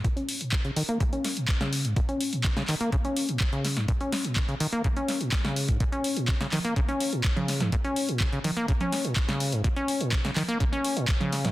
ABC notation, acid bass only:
X:1
M:4/4
L:1/16
Q:1/4=125
K:Abmix
V:1 name="Acid bass" clef=bass
B,, D2 B,, D, D, E, B, D, D2 B,, z D,2 A,, | B,, D2 B,, D, D, E, B, D, D2 B,, z D,2 A,, | B,, D2 B,, D, D, E, B, D, D2 B,, z D,2 A,, | B,, D2 B,, D, D, E, B, D, D2 B,, z D,2 A,, |
B,, D2 B,, D, D, E, B, D, D2 B,, z D,2 A,, | B,, D2 B,, D, D, E, B, D, D2 B,, z D,2 A,, |]